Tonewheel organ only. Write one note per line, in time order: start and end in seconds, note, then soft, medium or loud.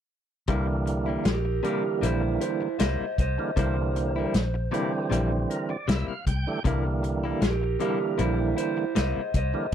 0.49 1.27 D3 medium
0.49 1.27 E3 medium
0.49 1.27 G3 medium
0.49 1.28 A#3 medium
1.63 2.68 D3 medium
1.63 2.69 E3 medium
1.63 2.69 G3 medium
1.63 2.69 A#3 medium
3.38 3.51 D3 medium
3.38 3.51 E3 medium
3.38 3.51 G3 medium
3.38 3.51 A#3 medium
3.56 4.35 D3 medium
3.56 4.35 E3 medium
3.56 4.35 G3 soft
3.56 4.35 A#3 medium
4.71 5.76 D3 medium
4.71 5.77 E3 medium
4.71 5.77 G3 medium
4.71 5.77 C4 medium
5.50 5.69 A#4 medium
5.70 5.87 D5 medium
5.88 6.07 E5 medium
6.08 6.25 F5 medium
6.27 6.63 G5 medium
6.47 6.59 D3 medium
6.47 6.60 E3 medium
6.47 6.60 G3 medium
6.47 6.60 A3 medium
6.66 7.43 D3 medium
6.66 7.44 E3 medium
6.66 7.44 G3 medium
6.66 7.44 A#3 medium
7.80 8.85 D3 medium
7.80 8.85 E3 medium
7.80 8.85 G3 medium
7.80 8.86 A#3 medium
9.53 9.67 D3 medium
9.53 9.67 E3 medium
9.53 9.67 G3 medium
9.53 9.67 A#3 medium